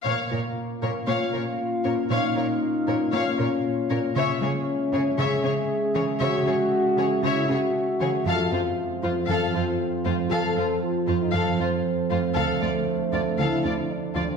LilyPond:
<<
  \new Staff \with { instrumentName = "Violin section" } { \time 4/4 \key f \phrygian \tempo 4 = 117 <des'' f''>8 <bes' des''>8 r8 <bes' des''>8 <des'' f''>8 <bes' des''>8 r8 <bes' des''>8 | <des'' f''>8 <bes' des''>8 r8 <bes' des''>8 <des'' f''>8 <bes' des''>8 r8 <bes' des''>8 | <des'' fes''>8 <aes' des''>8 r8 <aes' des''>8 <des'' fes''>8 <aes' des''>8 r8 <aes' des''>8 | <des'' fes''>8 <aes' des''>8 r8 <aes' des''>8 <des'' fes''>8 <aes' des''>8 r8 <aes' des''>8 |
<a' f''>8 <f' c''>8 r8 <f' c''>8 <a' f''>8 <f' c''>8 r8 <f' c''>8 | <a' f''>8 <f' c''>8 r8 <f' c''>8 <a' f''>8 <f' c''>8 r8 <f' c''>8 | <a' f''>8 <f' d''>8 r8 <f' d''>8 <a' f''>8 <f' d''>8 r8 <f' d''>8 | }
  \new Staff \with { instrumentName = "French horn section" } { \time 4/4 \key f \phrygian bes2 f'2 | ees'2 des'2 | des'2 aes'2 | ges'2 fes'8 ges'4. |
f'2 f'2 | a'4 f'8. ees'16 f'8 r4. | a2 e'4 d'8. c'16 | }
  \new Staff \with { instrumentName = "Synth drone" } { \time 4/4 \key f \phrygian << { <bes f' f''>1~ | <bes f' f''>1 | <aes aes' fes''>1~ | <aes aes' fes''>1 |
<f a' c''>1~ | <f a' c''>1~ | <f a' c''>1 | } \\ { des'1~ | des'1 | des'1~ | des'1 |
c'1~ | c'1 | d'1 | } >> }
  \new Staff \with { instrumentName = "Synth pluck" } { \time 4/4 \key f \phrygian bes8 f'8 r8 bes'8 bes8 bes'8 r8 des'8 | bes8 f'8 r8 bes'8 bes8 bes'8 r8 des'8 | des8 aes8 r8 des'8 des8 des'8 r8 fes8 | des8 aes8 r8 des'8 des8 des'8 r8 fes8 |
f8 c'8 r8 f'8 f8 f'8 r8 a8 | f8 c'8 r8 f'8 f8 f'8 r8 a8 | d8 a8 r8 d'8 d8 d'8 r8 f8 | }
  \new Staff \with { instrumentName = "Cello section" } { \clef bass \time 4/4 \key f \phrygian bes,8 bes,8 r8 bes,8 bes,8 bes,8 r8 bes,8 | bes,8 bes,8 r8 bes,8 bes,8 bes,8 r8 bes,8 | des8 des8 r8 des8 des8 des8 r8 des8 | des8 des8 r8 des8 des8 des8 r8 des8 |
f,8 f,8 r8 f,8 f,8 f,8 r8 f,8 | f,8 f,8 r8 f,8 f,8 f,8 r8 f,8 | d,8 d,8 r8 d,8 d,8 d,8 r8 d,8 | }
>>